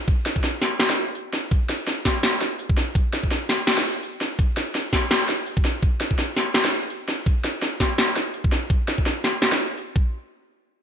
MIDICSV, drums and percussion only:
0, 0, Header, 1, 2, 480
1, 0, Start_track
1, 0, Tempo, 359281
1, 103, Time_signature, 4, 2, 24, 8
1, 14466, End_track
2, 0, Start_track
2, 0, Title_t, "Drums"
2, 102, Note_on_c, 9, 42, 78
2, 104, Note_on_c, 9, 36, 120
2, 236, Note_off_c, 9, 42, 0
2, 237, Note_off_c, 9, 36, 0
2, 345, Note_on_c, 9, 40, 54
2, 345, Note_on_c, 9, 42, 70
2, 479, Note_off_c, 9, 40, 0
2, 479, Note_off_c, 9, 42, 0
2, 480, Note_on_c, 9, 36, 64
2, 583, Note_on_c, 9, 40, 51
2, 583, Note_on_c, 9, 42, 79
2, 613, Note_off_c, 9, 36, 0
2, 717, Note_off_c, 9, 40, 0
2, 717, Note_off_c, 9, 42, 0
2, 823, Note_on_c, 9, 38, 61
2, 823, Note_on_c, 9, 42, 65
2, 956, Note_off_c, 9, 38, 0
2, 956, Note_off_c, 9, 42, 0
2, 1063, Note_on_c, 9, 38, 122
2, 1063, Note_on_c, 9, 42, 84
2, 1196, Note_off_c, 9, 38, 0
2, 1196, Note_off_c, 9, 42, 0
2, 1198, Note_on_c, 9, 40, 76
2, 1300, Note_on_c, 9, 42, 37
2, 1331, Note_off_c, 9, 40, 0
2, 1434, Note_off_c, 9, 42, 0
2, 1540, Note_on_c, 9, 42, 84
2, 1674, Note_off_c, 9, 42, 0
2, 1781, Note_on_c, 9, 40, 51
2, 1781, Note_on_c, 9, 42, 65
2, 1915, Note_off_c, 9, 40, 0
2, 1915, Note_off_c, 9, 42, 0
2, 2022, Note_on_c, 9, 42, 79
2, 2023, Note_on_c, 9, 36, 123
2, 2155, Note_off_c, 9, 42, 0
2, 2156, Note_off_c, 9, 36, 0
2, 2262, Note_on_c, 9, 40, 51
2, 2262, Note_on_c, 9, 42, 65
2, 2395, Note_off_c, 9, 40, 0
2, 2395, Note_off_c, 9, 42, 0
2, 2503, Note_on_c, 9, 40, 52
2, 2503, Note_on_c, 9, 42, 80
2, 2637, Note_off_c, 9, 40, 0
2, 2637, Note_off_c, 9, 42, 0
2, 2742, Note_on_c, 9, 38, 63
2, 2742, Note_on_c, 9, 42, 60
2, 2743, Note_on_c, 9, 36, 62
2, 2876, Note_off_c, 9, 38, 0
2, 2876, Note_off_c, 9, 42, 0
2, 2877, Note_off_c, 9, 36, 0
2, 2982, Note_on_c, 9, 38, 121
2, 2982, Note_on_c, 9, 42, 77
2, 3116, Note_off_c, 9, 38, 0
2, 3116, Note_off_c, 9, 42, 0
2, 3224, Note_on_c, 9, 40, 51
2, 3224, Note_on_c, 9, 42, 37
2, 3357, Note_off_c, 9, 40, 0
2, 3357, Note_off_c, 9, 42, 0
2, 3463, Note_on_c, 9, 42, 83
2, 3597, Note_off_c, 9, 42, 0
2, 3601, Note_on_c, 9, 36, 112
2, 3705, Note_on_c, 9, 40, 49
2, 3705, Note_on_c, 9, 42, 66
2, 3734, Note_off_c, 9, 36, 0
2, 3839, Note_off_c, 9, 40, 0
2, 3839, Note_off_c, 9, 42, 0
2, 3944, Note_on_c, 9, 36, 120
2, 3946, Note_on_c, 9, 42, 76
2, 4077, Note_off_c, 9, 36, 0
2, 4079, Note_off_c, 9, 42, 0
2, 4185, Note_on_c, 9, 40, 52
2, 4185, Note_on_c, 9, 42, 64
2, 4319, Note_off_c, 9, 40, 0
2, 4319, Note_off_c, 9, 42, 0
2, 4321, Note_on_c, 9, 36, 66
2, 4426, Note_on_c, 9, 40, 49
2, 4426, Note_on_c, 9, 42, 78
2, 4454, Note_off_c, 9, 36, 0
2, 4559, Note_off_c, 9, 40, 0
2, 4559, Note_off_c, 9, 42, 0
2, 4664, Note_on_c, 9, 38, 62
2, 4664, Note_on_c, 9, 42, 60
2, 4798, Note_off_c, 9, 38, 0
2, 4798, Note_off_c, 9, 42, 0
2, 4906, Note_on_c, 9, 38, 123
2, 4906, Note_on_c, 9, 42, 77
2, 5039, Note_off_c, 9, 38, 0
2, 5039, Note_off_c, 9, 42, 0
2, 5043, Note_on_c, 9, 40, 72
2, 5147, Note_on_c, 9, 42, 36
2, 5177, Note_off_c, 9, 40, 0
2, 5281, Note_off_c, 9, 42, 0
2, 5386, Note_on_c, 9, 42, 76
2, 5520, Note_off_c, 9, 42, 0
2, 5624, Note_on_c, 9, 40, 48
2, 5624, Note_on_c, 9, 42, 62
2, 5758, Note_off_c, 9, 40, 0
2, 5758, Note_off_c, 9, 42, 0
2, 5863, Note_on_c, 9, 36, 117
2, 5863, Note_on_c, 9, 42, 74
2, 5996, Note_off_c, 9, 36, 0
2, 5997, Note_off_c, 9, 42, 0
2, 6104, Note_on_c, 9, 40, 51
2, 6104, Note_on_c, 9, 42, 64
2, 6238, Note_off_c, 9, 40, 0
2, 6238, Note_off_c, 9, 42, 0
2, 6345, Note_on_c, 9, 40, 49
2, 6345, Note_on_c, 9, 42, 73
2, 6478, Note_off_c, 9, 40, 0
2, 6478, Note_off_c, 9, 42, 0
2, 6582, Note_on_c, 9, 36, 59
2, 6583, Note_on_c, 9, 38, 61
2, 6583, Note_on_c, 9, 42, 59
2, 6716, Note_off_c, 9, 36, 0
2, 6716, Note_off_c, 9, 38, 0
2, 6716, Note_off_c, 9, 42, 0
2, 6824, Note_on_c, 9, 38, 119
2, 6824, Note_on_c, 9, 42, 75
2, 6957, Note_off_c, 9, 38, 0
2, 6957, Note_off_c, 9, 42, 0
2, 7064, Note_on_c, 9, 40, 51
2, 7064, Note_on_c, 9, 42, 35
2, 7197, Note_off_c, 9, 40, 0
2, 7197, Note_off_c, 9, 42, 0
2, 7303, Note_on_c, 9, 42, 77
2, 7436, Note_off_c, 9, 42, 0
2, 7440, Note_on_c, 9, 36, 105
2, 7543, Note_on_c, 9, 40, 50
2, 7543, Note_on_c, 9, 42, 61
2, 7573, Note_off_c, 9, 36, 0
2, 7677, Note_off_c, 9, 40, 0
2, 7677, Note_off_c, 9, 42, 0
2, 7782, Note_on_c, 9, 42, 72
2, 7783, Note_on_c, 9, 36, 115
2, 7915, Note_off_c, 9, 42, 0
2, 7917, Note_off_c, 9, 36, 0
2, 8023, Note_on_c, 9, 40, 50
2, 8023, Note_on_c, 9, 42, 64
2, 8157, Note_off_c, 9, 40, 0
2, 8157, Note_off_c, 9, 42, 0
2, 8160, Note_on_c, 9, 36, 61
2, 8264, Note_on_c, 9, 40, 50
2, 8264, Note_on_c, 9, 42, 75
2, 8294, Note_off_c, 9, 36, 0
2, 8398, Note_off_c, 9, 40, 0
2, 8398, Note_off_c, 9, 42, 0
2, 8504, Note_on_c, 9, 38, 58
2, 8504, Note_on_c, 9, 42, 57
2, 8638, Note_off_c, 9, 38, 0
2, 8638, Note_off_c, 9, 42, 0
2, 8743, Note_on_c, 9, 38, 114
2, 8743, Note_on_c, 9, 42, 73
2, 8876, Note_off_c, 9, 38, 0
2, 8876, Note_off_c, 9, 42, 0
2, 8879, Note_on_c, 9, 40, 78
2, 8984, Note_on_c, 9, 42, 36
2, 9012, Note_off_c, 9, 40, 0
2, 9118, Note_off_c, 9, 42, 0
2, 9224, Note_on_c, 9, 42, 75
2, 9357, Note_off_c, 9, 42, 0
2, 9465, Note_on_c, 9, 40, 50
2, 9465, Note_on_c, 9, 42, 60
2, 9598, Note_off_c, 9, 40, 0
2, 9598, Note_off_c, 9, 42, 0
2, 9704, Note_on_c, 9, 36, 113
2, 9705, Note_on_c, 9, 42, 75
2, 9837, Note_off_c, 9, 36, 0
2, 9839, Note_off_c, 9, 42, 0
2, 9944, Note_on_c, 9, 40, 54
2, 9944, Note_on_c, 9, 42, 63
2, 10077, Note_off_c, 9, 40, 0
2, 10077, Note_off_c, 9, 42, 0
2, 10184, Note_on_c, 9, 40, 54
2, 10184, Note_on_c, 9, 42, 73
2, 10318, Note_off_c, 9, 40, 0
2, 10318, Note_off_c, 9, 42, 0
2, 10423, Note_on_c, 9, 36, 56
2, 10424, Note_on_c, 9, 38, 56
2, 10424, Note_on_c, 9, 42, 58
2, 10557, Note_off_c, 9, 36, 0
2, 10557, Note_off_c, 9, 38, 0
2, 10557, Note_off_c, 9, 42, 0
2, 10665, Note_on_c, 9, 38, 113
2, 10665, Note_on_c, 9, 42, 74
2, 10799, Note_off_c, 9, 38, 0
2, 10799, Note_off_c, 9, 42, 0
2, 10905, Note_on_c, 9, 40, 53
2, 10905, Note_on_c, 9, 42, 36
2, 11039, Note_off_c, 9, 40, 0
2, 11039, Note_off_c, 9, 42, 0
2, 11143, Note_on_c, 9, 42, 76
2, 11276, Note_off_c, 9, 42, 0
2, 11280, Note_on_c, 9, 36, 102
2, 11384, Note_on_c, 9, 40, 51
2, 11384, Note_on_c, 9, 42, 64
2, 11414, Note_off_c, 9, 36, 0
2, 11518, Note_off_c, 9, 40, 0
2, 11518, Note_off_c, 9, 42, 0
2, 11623, Note_on_c, 9, 36, 113
2, 11623, Note_on_c, 9, 42, 77
2, 11757, Note_off_c, 9, 36, 0
2, 11757, Note_off_c, 9, 42, 0
2, 11865, Note_on_c, 9, 40, 56
2, 11865, Note_on_c, 9, 42, 66
2, 11999, Note_off_c, 9, 40, 0
2, 11999, Note_off_c, 9, 42, 0
2, 12000, Note_on_c, 9, 36, 60
2, 12105, Note_on_c, 9, 40, 55
2, 12105, Note_on_c, 9, 42, 78
2, 12134, Note_off_c, 9, 36, 0
2, 12239, Note_off_c, 9, 40, 0
2, 12239, Note_off_c, 9, 42, 0
2, 12345, Note_on_c, 9, 38, 58
2, 12345, Note_on_c, 9, 42, 62
2, 12479, Note_off_c, 9, 38, 0
2, 12479, Note_off_c, 9, 42, 0
2, 12584, Note_on_c, 9, 38, 111
2, 12584, Note_on_c, 9, 42, 78
2, 12718, Note_off_c, 9, 38, 0
2, 12718, Note_off_c, 9, 42, 0
2, 12720, Note_on_c, 9, 40, 80
2, 12824, Note_on_c, 9, 42, 37
2, 12853, Note_off_c, 9, 40, 0
2, 12957, Note_off_c, 9, 42, 0
2, 13062, Note_on_c, 9, 42, 77
2, 13196, Note_off_c, 9, 42, 0
2, 13303, Note_on_c, 9, 36, 113
2, 13436, Note_off_c, 9, 36, 0
2, 14466, End_track
0, 0, End_of_file